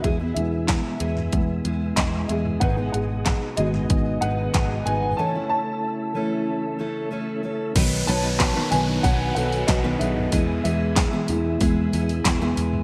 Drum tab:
CC |----------------|----------------|----------------|x---------------|
HH |x-x-x-x-x-x-x-x-|x-x-x-x-x-x-x-x-|----------------|o-o-o-o-o-ooo-o-|
CP |----x-------x---|----x-------x---|----------------|----x-------x---|
SD |----o--o----o---|----o--o----o---|----------------|----o-------o---|
FT |-------o-------o|-------o-------o|----------------|---------------o|
BD |o---o---o---o---|o---o---o---o---|----------------|o---o---o---o---|

CC |----------------|
HH |o-o-o-o-o-ooo-o-|
CP |----x-------x---|
SD |----o-------o---|
FT |---------------o|
BD |o---o---o---o---|